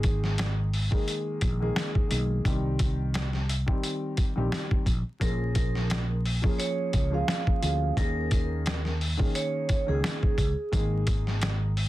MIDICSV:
0, 0, Header, 1, 5, 480
1, 0, Start_track
1, 0, Tempo, 689655
1, 1706, Time_signature, 4, 2, 24, 8
1, 8273, End_track
2, 0, Start_track
2, 0, Title_t, "Vibraphone"
2, 0, Program_c, 0, 11
2, 3631, Note_on_c, 0, 70, 104
2, 3844, Note_off_c, 0, 70, 0
2, 3864, Note_on_c, 0, 70, 85
2, 4215, Note_off_c, 0, 70, 0
2, 4583, Note_on_c, 0, 73, 86
2, 4935, Note_off_c, 0, 73, 0
2, 4972, Note_on_c, 0, 77, 86
2, 5525, Note_off_c, 0, 77, 0
2, 5551, Note_on_c, 0, 70, 111
2, 5765, Note_off_c, 0, 70, 0
2, 5788, Note_on_c, 0, 70, 82
2, 6137, Note_off_c, 0, 70, 0
2, 6509, Note_on_c, 0, 73, 87
2, 6858, Note_off_c, 0, 73, 0
2, 6878, Note_on_c, 0, 68, 77
2, 7438, Note_off_c, 0, 68, 0
2, 8273, End_track
3, 0, Start_track
3, 0, Title_t, "Grand piano"
3, 0, Program_c, 1, 0
3, 0, Note_on_c, 1, 51, 96
3, 0, Note_on_c, 1, 56, 96
3, 0, Note_on_c, 1, 58, 89
3, 0, Note_on_c, 1, 68, 110
3, 450, Note_off_c, 1, 51, 0
3, 453, Note_off_c, 1, 56, 0
3, 455, Note_off_c, 1, 58, 0
3, 458, Note_off_c, 1, 68, 0
3, 631, Note_on_c, 1, 51, 89
3, 636, Note_on_c, 1, 56, 90
3, 642, Note_on_c, 1, 58, 87
3, 647, Note_on_c, 1, 68, 97
3, 1072, Note_off_c, 1, 51, 0
3, 1075, Note_off_c, 1, 56, 0
3, 1078, Note_off_c, 1, 58, 0
3, 1080, Note_off_c, 1, 68, 0
3, 1114, Note_on_c, 1, 51, 90
3, 1120, Note_on_c, 1, 56, 88
3, 1125, Note_on_c, 1, 58, 92
3, 1131, Note_on_c, 1, 68, 108
3, 1436, Note_off_c, 1, 51, 0
3, 1441, Note_off_c, 1, 56, 0
3, 1443, Note_off_c, 1, 58, 0
3, 1446, Note_off_c, 1, 68, 0
3, 1446, Note_on_c, 1, 51, 76
3, 1452, Note_on_c, 1, 56, 74
3, 1457, Note_on_c, 1, 58, 72
3, 1463, Note_on_c, 1, 68, 81
3, 1679, Note_off_c, 1, 51, 0
3, 1682, Note_off_c, 1, 56, 0
3, 1684, Note_off_c, 1, 58, 0
3, 1687, Note_off_c, 1, 68, 0
3, 1703, Note_on_c, 1, 51, 106
3, 1708, Note_on_c, 1, 55, 86
3, 1713, Note_on_c, 1, 60, 85
3, 1719, Note_on_c, 1, 67, 104
3, 2373, Note_off_c, 1, 51, 0
3, 2376, Note_off_c, 1, 55, 0
3, 2378, Note_off_c, 1, 60, 0
3, 2381, Note_off_c, 1, 67, 0
3, 2549, Note_on_c, 1, 51, 89
3, 2555, Note_on_c, 1, 55, 87
3, 2560, Note_on_c, 1, 60, 86
3, 2566, Note_on_c, 1, 67, 96
3, 2991, Note_off_c, 1, 51, 0
3, 2994, Note_off_c, 1, 55, 0
3, 2997, Note_off_c, 1, 60, 0
3, 3000, Note_off_c, 1, 67, 0
3, 3032, Note_on_c, 1, 51, 96
3, 3037, Note_on_c, 1, 55, 87
3, 3043, Note_on_c, 1, 60, 83
3, 3048, Note_on_c, 1, 67, 103
3, 3357, Note_off_c, 1, 51, 0
3, 3359, Note_off_c, 1, 55, 0
3, 3362, Note_off_c, 1, 60, 0
3, 3364, Note_off_c, 1, 67, 0
3, 3617, Note_on_c, 1, 53, 89
3, 3623, Note_on_c, 1, 58, 82
3, 3628, Note_on_c, 1, 61, 84
3, 3633, Note_on_c, 1, 68, 105
3, 4290, Note_off_c, 1, 53, 0
3, 4293, Note_off_c, 1, 58, 0
3, 4295, Note_off_c, 1, 61, 0
3, 4298, Note_off_c, 1, 68, 0
3, 4467, Note_on_c, 1, 53, 95
3, 4473, Note_on_c, 1, 58, 93
3, 4478, Note_on_c, 1, 61, 90
3, 4483, Note_on_c, 1, 68, 102
3, 4910, Note_off_c, 1, 53, 0
3, 4913, Note_off_c, 1, 58, 0
3, 4916, Note_off_c, 1, 61, 0
3, 4918, Note_off_c, 1, 68, 0
3, 4947, Note_on_c, 1, 53, 91
3, 4953, Note_on_c, 1, 58, 85
3, 4958, Note_on_c, 1, 61, 81
3, 4964, Note_on_c, 1, 68, 102
3, 5274, Note_off_c, 1, 53, 0
3, 5277, Note_off_c, 1, 58, 0
3, 5280, Note_off_c, 1, 61, 0
3, 5283, Note_off_c, 1, 68, 0
3, 5292, Note_on_c, 1, 53, 78
3, 5298, Note_on_c, 1, 58, 69
3, 5303, Note_on_c, 1, 61, 74
3, 5308, Note_on_c, 1, 68, 87
3, 5522, Note_off_c, 1, 53, 0
3, 5525, Note_off_c, 1, 58, 0
3, 5527, Note_off_c, 1, 61, 0
3, 5530, Note_off_c, 1, 68, 0
3, 5547, Note_on_c, 1, 51, 99
3, 5552, Note_on_c, 1, 58, 86
3, 5557, Note_on_c, 1, 61, 84
3, 5563, Note_on_c, 1, 68, 110
3, 6215, Note_off_c, 1, 51, 0
3, 6217, Note_off_c, 1, 58, 0
3, 6220, Note_off_c, 1, 61, 0
3, 6223, Note_off_c, 1, 68, 0
3, 6384, Note_on_c, 1, 51, 95
3, 6389, Note_on_c, 1, 58, 87
3, 6394, Note_on_c, 1, 61, 83
3, 6400, Note_on_c, 1, 68, 95
3, 6829, Note_off_c, 1, 51, 0
3, 6831, Note_off_c, 1, 58, 0
3, 6834, Note_off_c, 1, 61, 0
3, 6837, Note_off_c, 1, 68, 0
3, 6866, Note_on_c, 1, 51, 96
3, 6871, Note_on_c, 1, 58, 84
3, 6876, Note_on_c, 1, 61, 86
3, 6882, Note_on_c, 1, 68, 109
3, 7194, Note_off_c, 1, 51, 0
3, 7196, Note_off_c, 1, 58, 0
3, 7199, Note_off_c, 1, 61, 0
3, 7202, Note_off_c, 1, 68, 0
3, 7458, Note_on_c, 1, 51, 96
3, 7464, Note_on_c, 1, 56, 93
3, 7469, Note_on_c, 1, 58, 91
3, 7475, Note_on_c, 1, 68, 105
3, 8131, Note_off_c, 1, 51, 0
3, 8133, Note_off_c, 1, 56, 0
3, 8136, Note_off_c, 1, 58, 0
3, 8139, Note_off_c, 1, 68, 0
3, 8273, End_track
4, 0, Start_track
4, 0, Title_t, "Fretless electric bass"
4, 0, Program_c, 2, 35
4, 0, Note_on_c, 2, 32, 110
4, 612, Note_off_c, 2, 32, 0
4, 990, Note_on_c, 2, 34, 98
4, 1183, Note_off_c, 2, 34, 0
4, 1471, Note_on_c, 2, 35, 88
4, 1663, Note_off_c, 2, 35, 0
4, 1709, Note_on_c, 2, 36, 99
4, 2532, Note_off_c, 2, 36, 0
4, 3044, Note_on_c, 2, 34, 90
4, 3128, Note_off_c, 2, 34, 0
4, 3386, Note_on_c, 2, 34, 97
4, 3493, Note_off_c, 2, 34, 0
4, 3629, Note_on_c, 2, 34, 112
4, 4453, Note_off_c, 2, 34, 0
4, 4831, Note_on_c, 2, 37, 89
4, 5023, Note_off_c, 2, 37, 0
4, 5311, Note_on_c, 2, 38, 99
4, 5503, Note_off_c, 2, 38, 0
4, 5549, Note_on_c, 2, 39, 111
4, 6373, Note_off_c, 2, 39, 0
4, 6883, Note_on_c, 2, 37, 93
4, 6968, Note_off_c, 2, 37, 0
4, 7226, Note_on_c, 2, 37, 94
4, 7333, Note_off_c, 2, 37, 0
4, 7468, Note_on_c, 2, 32, 107
4, 8273, Note_off_c, 2, 32, 0
4, 8273, End_track
5, 0, Start_track
5, 0, Title_t, "Drums"
5, 23, Note_on_c, 9, 42, 73
5, 27, Note_on_c, 9, 36, 102
5, 93, Note_off_c, 9, 42, 0
5, 97, Note_off_c, 9, 36, 0
5, 165, Note_on_c, 9, 38, 41
5, 235, Note_off_c, 9, 38, 0
5, 265, Note_on_c, 9, 42, 76
5, 274, Note_on_c, 9, 38, 120
5, 275, Note_on_c, 9, 40, 97
5, 335, Note_off_c, 9, 42, 0
5, 343, Note_off_c, 9, 38, 0
5, 344, Note_off_c, 9, 40, 0
5, 511, Note_on_c, 9, 46, 53
5, 581, Note_off_c, 9, 46, 0
5, 640, Note_on_c, 9, 36, 97
5, 709, Note_off_c, 9, 36, 0
5, 749, Note_on_c, 9, 42, 91
5, 819, Note_off_c, 9, 42, 0
5, 983, Note_on_c, 9, 42, 73
5, 987, Note_on_c, 9, 36, 94
5, 1052, Note_off_c, 9, 42, 0
5, 1057, Note_off_c, 9, 36, 0
5, 1227, Note_on_c, 9, 38, 124
5, 1227, Note_on_c, 9, 40, 99
5, 1240, Note_on_c, 9, 42, 86
5, 1296, Note_off_c, 9, 38, 0
5, 1297, Note_off_c, 9, 40, 0
5, 1310, Note_off_c, 9, 42, 0
5, 1359, Note_on_c, 9, 36, 98
5, 1429, Note_off_c, 9, 36, 0
5, 1466, Note_on_c, 9, 42, 82
5, 1536, Note_off_c, 9, 42, 0
5, 1706, Note_on_c, 9, 36, 111
5, 1710, Note_on_c, 9, 42, 86
5, 1776, Note_off_c, 9, 36, 0
5, 1780, Note_off_c, 9, 42, 0
5, 1943, Note_on_c, 9, 42, 74
5, 1947, Note_on_c, 9, 36, 104
5, 2013, Note_off_c, 9, 42, 0
5, 2017, Note_off_c, 9, 36, 0
5, 2186, Note_on_c, 9, 42, 79
5, 2195, Note_on_c, 9, 38, 118
5, 2195, Note_on_c, 9, 40, 96
5, 2256, Note_off_c, 9, 42, 0
5, 2264, Note_off_c, 9, 38, 0
5, 2265, Note_off_c, 9, 40, 0
5, 2320, Note_on_c, 9, 38, 37
5, 2390, Note_off_c, 9, 38, 0
5, 2432, Note_on_c, 9, 42, 77
5, 2502, Note_off_c, 9, 42, 0
5, 2560, Note_on_c, 9, 36, 94
5, 2629, Note_off_c, 9, 36, 0
5, 2669, Note_on_c, 9, 42, 90
5, 2739, Note_off_c, 9, 42, 0
5, 2904, Note_on_c, 9, 42, 75
5, 2908, Note_on_c, 9, 36, 98
5, 2973, Note_off_c, 9, 42, 0
5, 2977, Note_off_c, 9, 36, 0
5, 3147, Note_on_c, 9, 38, 121
5, 3148, Note_on_c, 9, 40, 97
5, 3161, Note_on_c, 9, 42, 85
5, 3217, Note_off_c, 9, 38, 0
5, 3218, Note_off_c, 9, 40, 0
5, 3231, Note_off_c, 9, 42, 0
5, 3279, Note_on_c, 9, 36, 96
5, 3349, Note_off_c, 9, 36, 0
5, 3383, Note_on_c, 9, 36, 92
5, 3387, Note_on_c, 9, 42, 83
5, 3453, Note_off_c, 9, 36, 0
5, 3456, Note_off_c, 9, 42, 0
5, 3626, Note_on_c, 9, 36, 115
5, 3630, Note_on_c, 9, 42, 88
5, 3696, Note_off_c, 9, 36, 0
5, 3700, Note_off_c, 9, 42, 0
5, 3863, Note_on_c, 9, 42, 73
5, 3867, Note_on_c, 9, 36, 100
5, 3933, Note_off_c, 9, 42, 0
5, 3937, Note_off_c, 9, 36, 0
5, 4005, Note_on_c, 9, 38, 38
5, 4075, Note_off_c, 9, 38, 0
5, 4106, Note_on_c, 9, 42, 77
5, 4115, Note_on_c, 9, 38, 118
5, 4116, Note_on_c, 9, 40, 92
5, 4176, Note_off_c, 9, 42, 0
5, 4185, Note_off_c, 9, 38, 0
5, 4185, Note_off_c, 9, 40, 0
5, 4353, Note_on_c, 9, 46, 54
5, 4423, Note_off_c, 9, 46, 0
5, 4481, Note_on_c, 9, 36, 95
5, 4550, Note_off_c, 9, 36, 0
5, 4590, Note_on_c, 9, 42, 93
5, 4660, Note_off_c, 9, 42, 0
5, 4825, Note_on_c, 9, 42, 75
5, 4828, Note_on_c, 9, 36, 94
5, 4894, Note_off_c, 9, 42, 0
5, 4898, Note_off_c, 9, 36, 0
5, 5068, Note_on_c, 9, 38, 119
5, 5069, Note_on_c, 9, 40, 100
5, 5082, Note_on_c, 9, 42, 89
5, 5138, Note_off_c, 9, 38, 0
5, 5138, Note_off_c, 9, 40, 0
5, 5152, Note_off_c, 9, 42, 0
5, 5200, Note_on_c, 9, 36, 96
5, 5270, Note_off_c, 9, 36, 0
5, 5307, Note_on_c, 9, 42, 85
5, 5377, Note_off_c, 9, 42, 0
5, 5547, Note_on_c, 9, 36, 118
5, 5552, Note_on_c, 9, 42, 84
5, 5617, Note_off_c, 9, 36, 0
5, 5621, Note_off_c, 9, 42, 0
5, 5784, Note_on_c, 9, 42, 74
5, 5788, Note_on_c, 9, 36, 100
5, 5853, Note_off_c, 9, 42, 0
5, 5857, Note_off_c, 9, 36, 0
5, 6026, Note_on_c, 9, 42, 77
5, 6035, Note_on_c, 9, 38, 117
5, 6036, Note_on_c, 9, 40, 95
5, 6096, Note_off_c, 9, 42, 0
5, 6104, Note_off_c, 9, 38, 0
5, 6105, Note_off_c, 9, 40, 0
5, 6160, Note_on_c, 9, 38, 35
5, 6230, Note_off_c, 9, 38, 0
5, 6272, Note_on_c, 9, 46, 54
5, 6342, Note_off_c, 9, 46, 0
5, 6400, Note_on_c, 9, 36, 94
5, 6470, Note_off_c, 9, 36, 0
5, 6509, Note_on_c, 9, 42, 92
5, 6579, Note_off_c, 9, 42, 0
5, 6743, Note_on_c, 9, 42, 76
5, 6747, Note_on_c, 9, 36, 95
5, 6813, Note_off_c, 9, 42, 0
5, 6817, Note_off_c, 9, 36, 0
5, 6987, Note_on_c, 9, 38, 125
5, 6988, Note_on_c, 9, 40, 99
5, 7001, Note_on_c, 9, 42, 88
5, 7057, Note_off_c, 9, 38, 0
5, 7058, Note_off_c, 9, 40, 0
5, 7071, Note_off_c, 9, 42, 0
5, 7119, Note_on_c, 9, 36, 95
5, 7189, Note_off_c, 9, 36, 0
5, 7223, Note_on_c, 9, 36, 95
5, 7226, Note_on_c, 9, 42, 86
5, 7292, Note_off_c, 9, 36, 0
5, 7296, Note_off_c, 9, 42, 0
5, 7466, Note_on_c, 9, 36, 114
5, 7470, Note_on_c, 9, 42, 87
5, 7535, Note_off_c, 9, 36, 0
5, 7539, Note_off_c, 9, 42, 0
5, 7703, Note_on_c, 9, 42, 72
5, 7707, Note_on_c, 9, 36, 105
5, 7773, Note_off_c, 9, 42, 0
5, 7777, Note_off_c, 9, 36, 0
5, 7845, Note_on_c, 9, 38, 40
5, 7914, Note_off_c, 9, 38, 0
5, 7945, Note_on_c, 9, 42, 80
5, 7953, Note_on_c, 9, 38, 118
5, 7954, Note_on_c, 9, 40, 95
5, 8014, Note_off_c, 9, 42, 0
5, 8023, Note_off_c, 9, 38, 0
5, 8024, Note_off_c, 9, 40, 0
5, 8191, Note_on_c, 9, 46, 54
5, 8261, Note_off_c, 9, 46, 0
5, 8273, End_track
0, 0, End_of_file